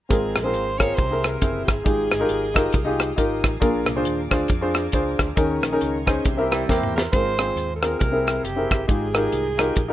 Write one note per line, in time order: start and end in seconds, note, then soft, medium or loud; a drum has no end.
0.09 0.33 G#1 medium
0.09 0.76 G#2 medium
0.09 0.96 F3 medium
0.09 0.96 A#3 medium
0.09 0.36 C4 medium
0.09 0.96 C4 medium
0.09 0.36 F4 medium
0.09 0.45 G#4 medium
0.09 0.96 G#4 medium
0.09 0.36 G#4 medium
0.09 0.37 A#4 medium
0.09 0.97 F5 medium
0.09 0.97 G#5 medium
0.09 1.84 A#5 medium
0.09 0.96 C6 medium
0.09 kick loud
0.09 closed hi-hat medium
0.35 0.52 A#1 medium
0.35 cross-stick loud
0.35 closed hi-hat medium
0.44 0.67 C4 medium
0.44 0.67 F4 medium
0.44 0.67 G#4 medium
0.44 0.67 A#4 medium
0.44 0.80 C5 medium
0.54 0.91 G#1 medium
0.54 closed hi-hat medium
0.78 0.97 C4 medium
0.78 0.97 F4 medium
0.78 0.98 G#4 medium
0.78 0.98 A#4 medium
0.78 0.97 C#5 medium
0.78 kick medium
0.78 cross-stick loud
0.78 closed hi-hat medium
0.95 1.36 C2 medium
0.95 1.64 C3 medium
0.95 1.84 E3 medium
0.95 1.84 A#3 medium
0.95 1.84 C4 medium
0.95 1.84 G#4 medium
0.95 1.25 C5 medium
0.95 1.85 E5 medium
0.95 1.85 C6 medium
0.95 kick loud
0.95 closed hi-hat medium
1.11 1.33 C4 medium
1.11 1.33 E4 medium
1.11 1.33 G#4 medium
1.11 1.34 A#4 medium
1.24 1.31 A4 medium
1.24 cross-stick loud
1.24 closed hi-hat medium
1.30 1.65 A#4 medium
1.41 1.64 F#1 medium
1.41 1.74 C4 medium
1.41 1.74 E4 medium
1.41 1.74 G#4 medium
1.41 1.75 C5 medium
1.41 kick medium
1.41 closed hi-hat loud
1.65 1.83 G1 medium
1.65 3.38 G#4 medium
1.65 kick medium
1.65 cross-stick loud
1.65 closed hi-hat medium
1.84 2.08 G#1 medium
1.84 2.51 G#2 medium
1.84 3.58 F3 medium
1.84 3.58 G#3 medium
1.84 2.11 D#4 medium
1.84 3.58 D#4 medium
1.84 2.11 F4 medium
1.84 2.12 G4 medium
1.84 2.12 G#4 medium
1.84 5.33 F5 medium
1.84 3.59 G5 medium
1.84 3.16 G5 medium
1.84 3.59 D#6 medium
1.84 kick loud
1.84 closed hi-hat medium
2.11 2.27 G1 medium
2.11 cross-stick loud
2.11 closed hi-hat medium
2.19 2.42 D#4 medium
2.19 2.42 F4 medium
2.19 2.43 G4 medium
2.19 2.43 A#4 medium
2.29 2.67 G#1 medium
2.29 closed hi-hat medium
2.54 2.73 D#4 medium
2.54 2.74 F4 medium
2.54 2.74 G4 medium
2.54 2.74 A#4 medium
2.54 2.73 D#5 medium
2.54 kick medium
2.54 cross-stick loud
2.54 closed hi-hat medium
2.73 3.11 C2 medium
2.73 3.15 F5 medium
2.73 kick loud
2.73 closed hi-hat medium
2.85 3.08 D#4 medium
2.85 3.08 F4 medium
2.85 3.08 G4 medium
2.85 3.09 G#4 medium
2.99 cross-stick loud
2.99 closed hi-hat medium
3.16 3.40 G#1 medium
3.16 3.49 D#4 medium
3.16 3.50 F4 medium
3.16 3.50 G4 medium
3.16 3.50 A#4 medium
3.16 3.42 G5 medium
3.16 kick medium
3.16 closed hi-hat loud
3.44 3.59 A1 medium
3.44 3.61 G#5 medium
3.44 kick medium
3.44 cross-stick loud
3.44 closed hi-hat medium
3.60 3.84 A#1 medium
3.60 4.27 A#2 medium
3.60 5.34 F3 medium
3.60 5.34 A#3 medium
3.60 3.69 C4 medium
3.60 3.87 D4 medium
3.60 3.87 F4 medium
3.60 3.87 G#4 medium
3.60 5.35 G#4 medium
3.60 3.88 A#4 medium
3.60 7.09 A#5 medium
3.60 5.36 D6 medium
3.60 kick loud
3.60 closed hi-hat medium
3.68 5.37 D4 medium
3.86 4.03 C2 medium
3.86 cross-stick medium
3.86 closed hi-hat medium
3.95 4.18 D4 medium
3.95 4.18 F4 medium
3.95 4.19 G#4 medium
3.95 4.19 C5 medium
4.05 4.28 D#2 medium
4.05 closed hi-hat medium
4.30 4.47 D2 medium
4.30 4.49 D4 medium
4.30 4.49 F4 medium
4.30 4.49 G#4 medium
4.30 4.50 C5 medium
4.30 kick medium
4.30 cross-stick loud
4.30 closed hi-hat medium
4.48 4.87 F2 medium
4.48 kick loud
4.48 closed hi-hat medium
4.61 4.84 D4 medium
4.61 4.84 F4 medium
4.61 4.84 G#4 medium
4.61 4.84 C5 medium
4.74 cross-stick loud
4.74 closed hi-hat medium
4.92 5.15 C#2 medium
4.92 5.25 D4 medium
4.92 5.26 F4 medium
4.92 5.26 G#4 medium
4.92 5.26 C5 medium
4.92 kick medium
4.92 closed hi-hat medium
5.19 5.35 D2 medium
5.19 kick medium
5.19 cross-stick loud
5.19 closed hi-hat medium
5.35 5.63 D#2 medium
5.35 6.22 D#3 medium
5.35 6.03 D#3 medium
5.35 6.21 A#3 medium
5.35 6.22 C#4 medium
5.35 5.63 C#4 medium
5.35 5.63 D#4 medium
5.35 5.43 G4 medium
5.35 5.63 G#4 medium
5.35 5.63 A#4 medium
5.35 6.24 D#5 medium
5.35 6.24 C#6 medium
5.35 kick loud
5.35 closed hi-hat medium
5.41 5.82 G#4 medium
5.63 5.78 A#1 medium
5.63 cross-stick medium
5.63 closed hi-hat medium
5.71 5.94 C#4 medium
5.71 5.94 D#4 medium
5.71 5.95 G#4 medium
5.71 5.95 A#4 medium
5.81 6.19 C#2 medium
5.81 6.06 F4 medium
5.81 6.06 C#5 medium
5.81 closed hi-hat medium
6.05 6.25 C#4 medium
6.05 6.25 D#4 medium
6.05 6.25 G#4 medium
6.05 6.48 C5 soft
6.05 6.25 C5 medium
6.05 6.48 G#5 medium
6.05 kick medium
6.05 cross-stick loud
6.05 closed hi-hat medium
6.22 6.63 C2 medium
6.22 6.91 C3 medium
6.22 6.30 D#3 medium
6.22 7.10 A#3 medium
6.22 7.10 C4 medium
6.22 7.10 G4 medium
6.22 kick loud
6.22 closed hi-hat medium
6.26 7.13 E3 medium
6.26 7.13 E5 medium
6.26 7.13 G5 medium
6.26 7.13 C6 medium
6.37 6.60 C4 medium
6.37 6.60 E4 medium
6.37 6.60 G4 medium
6.37 6.60 A#4 medium
6.51 6.69 G3 medium
6.51 6.68 E4 medium
6.51 cross-stick loud
6.51 closed hi-hat medium
6.68 7.06 E2 medium
6.68 6.95 A#3 medium
6.68 7.01 C4 medium
6.68 7.01 E4 medium
6.68 7.01 G4 medium
6.68 6.94 G4 medium
6.68 7.02 A#4 medium
6.68 kick medium
6.68 snare medium
6.83 mid tom medium
6.96 7.37 A#4 medium
6.96 snare medium
7.11 7.50 G#1 medium
7.11 7.79 G#2 medium
7.11 7.99 F3 medium
7.11 7.99 A#3 medium
7.11 7.98 C4 medium
7.11 7.30 C4 medium
7.11 7.31 F4 medium
7.11 7.98 G#4 medium
7.11 7.31 G#4 medium
7.11 7.32 A#4 medium
7.11 7.72 C5 loud
7.11 kick loud
7.11 closed hi-hat medium
7.39 7.66 C4 medium
7.39 7.66 F4 medium
7.39 7.66 G#4 medium
7.39 7.67 C5 medium
7.39 cross-stick medium
7.39 closed hi-hat medium
7.55 7.93 D#2 medium
7.55 closed hi-hat medium
7.76 7.83 A4 medium
7.81 8.01 C4 medium
7.81 8.01 F4 medium
7.81 8.01 G#4 medium
7.81 7.98 A#4 medium
7.81 8.02 A#4 medium
7.81 cross-stick loud
7.81 closed hi-hat medium
7.99 8.38 C2 loud
7.99 8.66 C3 medium
7.99 8.87 E3 medium
7.99 8.87 G#3 medium
7.99 8.86 A#3 medium
7.99 8.87 C4 medium
7.99 8.46 A#4 medium
7.99 kick loud
7.99 closed hi-hat medium
8.12 8.41 C4 medium
8.12 8.41 E4 medium
8.12 8.42 G#4 medium
8.12 8.42 A#4 medium
8.27 cross-stick loud
8.27 closed hi-hat medium
8.44 8.66 F#1 medium
8.44 8.87 G4 medium
8.44 closed hi-hat loud
8.56 8.79 C4 medium
8.56 8.79 E4 medium
8.56 8.80 G#4 medium
8.56 8.80 A#4 medium
8.71 8.86 G1 medium
8.71 kick medium
8.71 cross-stick loud
8.71 closed hi-hat medium
8.87 9.26 G#1 medium
8.87 9.54 G#2 medium
8.87 9.93 F3 medium
8.87 9.93 G#3 medium
8.87 9.05 D#4 medium
8.87 9.93 D#4 soft
8.87 9.06 F4 medium
8.87 8.95 F#4 medium
8.87 9.06 G4 medium
8.87 9.93 G#4 medium
8.87 9.06 G#4 medium
8.87 kick loud
8.87 closed hi-hat medium
8.94 9.93 G5 medium
9.14 9.41 D#4 medium
9.14 9.41 F4 medium
9.14 9.41 G4 medium
9.14 9.42 A#4 medium
9.14 cross-stick loud
9.14 closed hi-hat medium
9.32 9.70 C2 loud
9.32 closed hi-hat medium
9.58 9.76 D#4 medium
9.58 9.76 F4 medium
9.58 9.77 G4 medium
9.58 9.77 A#4 medium
9.58 cross-stick loud
9.58 closed hi-hat medium
9.76 9.93 A#1 medium
9.76 kick loud
9.76 closed hi-hat medium
9.88 9.93 D#4 medium
9.88 9.93 F4 medium
9.88 9.93 G4 medium